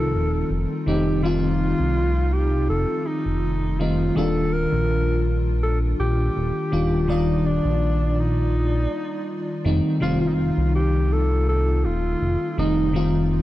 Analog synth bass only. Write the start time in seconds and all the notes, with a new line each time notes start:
Already playing: C2
0.14 D#1
0.50 F1
0.87 F1
1.79 C2
2.70 F1
3.26 F1
4.17 D#1
4.72 A#1
6.00 A#1
6.36 D#1
6.73 D#1
7.65 A#1
9.65 F1
10.02 F1
10.58 C2
11.85 D#1
12.21 F1
12.58 F1